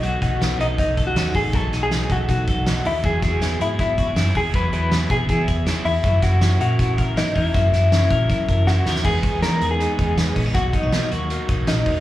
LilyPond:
<<
  \new Staff \with { instrumentName = "Clean electric guitar" } { \time 4/4 \key b \major \tempo 4 = 160 fis'8 fis'4 dis'8 dis'8. fis'8. gis'8 | a'8. gis'8. fis'8 fis'4. e'8 | gis'8 gis'4 e'8 e'8. r8. gis'8 | b'8 b'4 gis'8 gis'8. r8. e'8~ |
e'8 fis'4 fis'4 r8 dis'8 e'8~ | e'2. fis'4 | gis'4 ais'8. gis'2~ gis'16 | fis'8 dis'4 r4. dis'4 | }
  \new Staff \with { instrumentName = "Clean electric guitar" } { \time 4/4 \key b \major fis8 dis'8 b8 a'8 dis'8 a'8 cis'16 dis'16 a'8 | fis8 dis'8 b8 a'8 dis'8 a'8 dis'8 a'8 | fis8 e'8 b8 gis'8 e'8 fis'16 gis'16 e'8 gis'8 | fis8 e'8 b8 gis'8 e'8 gis'8 e'8 gis'8 |
fis8 e'8 cis'8 ais'8 e'8 ais'8 e'8 ais'8 | fis8 e'8 cis'8 ais'8 e'8 ais'8 e'8 ais'8 | <b gis'>8 dis'8 b8 gis'8 b8 dis'8 b8 cis'16 dis'16 | <fis fis'>8 cis'16 dis'16 ais8 fis'8 ais8 dis'8 ais8 dis'8 | }
  \new Staff \with { instrumentName = "Overdriven electric guitar" } { \time 4/4 \key b \major <b, fis a dis'>8 <fis a dis'>8 <b, fis a dis'>8 <fis a dis'>4. <b, fis a dis'>8 <fis a dis'>8 | <b, fis a dis'>8 <fis a dis'>8 <b, fis a dis'>8 <fis a dis'>4. <b, fis a dis'>8 <fis a dis'>8 | <e fis b e' gis'>8 <b e' gis'>8 <fis b e' gis'>8 <b e' gis'>4. <fis b e' gis'>8 <b e' gis'>8 | <e fis b e' gis'>8 <b e' gis'>8 <fis b e' gis'>8 <b e' gis'>4. <fis b e' gis'>8 <b e' gis'>8 |
<fis, cis e ais e'>8 <e ais e'>8 <cis e ais e'>8 <e ais e'>4. <cis e ais e'>8 <e ais e'>8 | <fis, cis e ais e'>8 <e ais e'>8 <cis e ais e'>8 <e ais e'>4. <cis e ais e'>8 <e ais e'>8 | <e gis b dis'>4 <e gis b dis'>4 <e gis b dis'>8 <gis b dis'>4 <gis b dis'>8 | <b, fis ais dis'>4 <b, fis ais dis'>8 <fis ais dis'>8 <b, fis ais dis'>8 <fis ais dis'>4 <fis ais dis'>8 | }
  \new Staff \with { instrumentName = "Fingered electric bass" } { \clef bass \time 4/4 \key b \major b,,8 b,,4 b,,4. dis,8 a,,8 | b,,8 b,,4 b,,8 b,8 b,,4 dis,8 | e,8 e,4 gis,4. fis,8 dis,8 | e,8 e,4 b,8 e8 e,8. r16 e,8 |
fis,8 fis,4 ais,4. gis,8 e,8 | fis,8 r4 ais,8 fis8 fis,4 dis,8 | e,8 r16 e,16 e8 e,8. r16 e,4 ais,,8 | b,,8 r16 b,,16 b,8 dis,8. r16 b,,8 ais,,8 r8 | }
  \new DrumStaff \with { instrumentName = "Drums" } \drummode { \time 4/4 hh8 <hh bd>8 <hh sn>8 hh8 <hh bd>8 <hh bd>8 <hh sn>8 <hho bd>8 | <hh bd>8 <hh sn>8 <hh sn>8 <hh bd>8 <hh bd>8 <hh bd>8 <hh sn>8 hho8 | <hh bd>8 <hh bd sn>8 <hh sn>8 hh8 <hh bd>8 <hh bd>8 <hh sn>8 <hho bd>8 | <hh bd>8 hh8 <hh sn>8 <hh bd>8 <hh bd>8 <hh bd>8 <hh sn>8 hho8 |
<hh bd>8 <hh bd sn>8 <hh sn>8 hh8 <hh bd>8 <hh bd>8 <hh sn>8 <hho bd>8 | <hh bd>8 <hh sn>8 <hh sn>8 <hh bd>8 <hh bd>8 <hh bd>8 sn8 sn16 sn16 | <cymc bd>8 <hh bd>8 <hh sn>8 hh8 hh8 <hh bd>8 <hh sn>8 <hho bd>8 | <hh bd>8 <hh bd>8 <hh sn>8 hh8 hh8 <hh bd>8 <hh sn>8 <hho bd>8 | }
>>